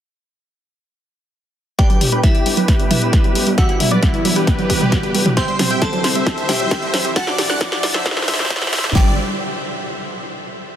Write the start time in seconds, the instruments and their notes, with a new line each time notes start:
1.79 analog synth pad G3 B3 D4, synth arpeggio sound G3, synth bell G4 G5, supersaw synth B4 D5, digital synth lead D6, kick, snare, closed hi-hat, riser
1.90 analog synth bass G1, synth arpeggio sound F#3, supersaw synth G4, digital synth lead G5, closed hi-hat
2.01 analog synth bass G1, supersaw synth G4, synth arpeggio sound G4, digital synth lead G5, open hi-hat, mid tom
2.12 analog synth bass G1, synth arpeggio sound G3, supersaw synth G4 B4, digital synth lead B5, closed hi-hat
2.23 synth arpeggio sound F#3, synth bell E4 E5, digital synth lead G5, kick, snare, closed hi-hat
2.35 analog synth bass G2, supersaw synth G4, synth arpeggio sound G4, digital synth lead G5, closed hi-hat
2.46 analog synth bass G1, synth arpeggio sound G3, supersaw synth G4, digital synth lead G5, open hi-hat
2.57 analog synth bass G1, synth arpeggio sound F#3, supersaw synth G4 B4, digital synth lead B5, closed hi-hat
2.68 synth arpeggio sound G4, kick, snare, closed hi-hat
2.79 analog synth bass G1, synth arpeggio sound G3, closed hi-hat
2.91 analog synth bass G1, synth arpeggio sound F#3, synth bell E4 E5, open hi-hat, mid tom
3.02 analog synth bass G1, synth arpeggio sound G4, closed hi-hat
3.13 synth arpeggio sound G3, kick, snare, closed hi-hat
3.24 analog synth bass G1, synth arpeggio sound F#3, closed hi-hat
3.35 analog synth bass D1, synth arpeggio sound G4, open hi-hat
3.47 analog synth bass G1, synth arpeggio sound G3, closed hi-hat
3.58 analog synth pad E3, synth arpeggio sound F#3, synth bell F#4 F#5, supersaw synth G4 E5, digital synth lead E6, kick, snare, closed hi-hat
3.69 analog synth bass E1, supersaw synth E4, synth arpeggio sound G4, digital synth lead E5, closed hi-hat
3.80 analog synth bass E1, synth arpeggio sound G3, supersaw synth E4, digital synth lead E5, open hi-hat, mid tom
3.91 analog synth bass E1, synth arpeggio sound F#3, supersaw synth B4 D5, digital synth lead D6
4.03 supersaw synth E4, synth arpeggio sound G4, digital synth lead E5, kick, snare, closed hi-hat
4.14 analog synth bass E2, synth arpeggio sound G3, supersaw synth E4, digital synth lead E5, closed hi-hat
4.25 analog synth bass E1, synth arpeggio sound F#3, supersaw synth E4, digital synth lead E5, open hi-hat
4.36 analog synth bass E1, supersaw synth G4 B4, synth arpeggio sound G4, digital synth lead B5, closed hi-hat
4.47 synth arpeggio sound G3, kick, snare, closed hi-hat
4.59 analog synth bass E1, synth arpeggio sound F#3, closed hi-hat
4.70 analog synth bass E1, synth arpeggio sound G4, kick, open hi-hat
4.81 analog synth bass E1, synth arpeggio sound G3, closed hi-hat, mid tom
4.92 synth arpeggio sound F#3, kick, snare, closed hi-hat
5.03 analog synth bass E1, synth arpeggio sound G4, closed hi-hat
5.14 analog synth bass D1, synth arpeggio sound G3, open hi-hat
5.26 analog synth bass E1, synth arpeggio sound F#3, closed hi-hat, mid tom
5.37 analog synth pad C3 C4 E4, synth arpeggio sound G4, synth bell C5 C6, supersaw synth E5 G5, digital synth lead G6, kick, snare, closed hi-hat
5.48 analog synth bass C2, synth arpeggio sound G3, supersaw synth C5, digital synth lead C6, closed hi-hat
5.59 analog synth bass C2, synth arpeggio sound F#3, supersaw synth C5, digital synth lead C6, snare, open hi-hat, mid tom
5.70 analog synth bass C2, synth arpeggio sound G4, supersaw synth E5 G5, digital synth lead G6, closed hi-hat
5.82 synth arpeggio sound G3, synth bell A4 A5, supersaw synth C5, digital synth lead C6, kick, snare, closed hi-hat
5.93 analog synth bass G1, synth arpeggio sound F#3, supersaw synth C5, digital synth lead C6, closed hi-hat
6.04 analog synth bass C2, synth arpeggio sound G4, supersaw synth C5, digital synth lead C6, snare, open hi-hat
6.15 analog synth bass C2, synth arpeggio sound G3, supersaw synth C5 E5, digital synth lead E6, closed hi-hat
6.27 synth arpeggio sound F#3, kick, snare, closed hi-hat
6.38 analog synth bass C2, synth arpeggio sound G4, closed hi-hat
6.49 analog synth bass C2, synth arpeggio sound G3, synth bell G4 G5, snare, open hi-hat, mid tom
6.60 analog synth bass C2, synth arpeggio sound F#3, closed hi-hat
6.71 synth arpeggio sound G4, kick, snare, closed hi-hat
6.82 analog synth bass C2, synth arpeggio sound G3, closed hi-hat
6.94 analog synth bass G1, synth arpeggio sound F#3, snare, open hi-hat
7.05 analog synth bass C2, synth arpeggio sound G4, closed hi-hat
7.16 analog synth pad D3 D4 A4, synth arpeggio sound G3, synth bell F#4 F#5, supersaw synth F#5 A5, digital synth lead A6, kick, snare, closed hi-hat
7.27 analog synth bass D2, synth arpeggio sound F#3, supersaw synth D5, digital synth lead D6, snare, closed hi-hat
7.38 analog synth bass D2, synth arpeggio sound G4, supersaw synth D5, digital synth lead D6, snare, open hi-hat, mid tom
7.50 analog synth bass D2, synth arpeggio sound G3, supersaw synth D5 F#5, digital synth lead F#6, snare
7.61 synth arpeggio sound F#3, supersaw synth D5, digital synth lead D6, kick, snare, closed hi-hat
7.72 synth arpeggio sound G4, supersaw synth D5, digital synth lead D6, snare, closed hi-hat
7.83 analog synth bass D2, synth arpeggio sound G3, supersaw synth D5, digital synth lead D6, snare, open hi-hat
7.94 analog synth bass D2, synth arpeggio sound F#3, supersaw synth C5 E5, digital synth lead E6, snare, closed hi-hat
8.06 synth arpeggio sound G4, kick, snare, closed hi-hat
8.11 snare
8.17 analog synth bass D2, synth arpeggio sound G3, snare, closed hi-hat
8.22 snare
8.28 analog synth bass D2, synth arpeggio sound G3, kick, snare, open hi-hat
8.34 snare
8.39 analog synth bass D2, synth arpeggio sound D4, snare, closed hi-hat, mid tom
8.45 snare
8.50 synth arpeggio sound G3, kick, snare, closed hi-hat
8.56 snare
8.62 analog synth bass D2, synth arpeggio sound G4, snare, closed hi-hat
8.67 snare
8.73 analog synth bass D2, synth arpeggio sound C4, snare, open hi-hat
8.78 snare
8.84 analog synth bass D2, synth arpeggio sound D3, snare, mid tom
8.90 snare
8.95 analog synth bass G1, synth arpeggio sound G3, analog synth pad G3 G4 B4 D5, supersaw synth D5, synth bell G5, digital synth lead D6, kick, snare, clap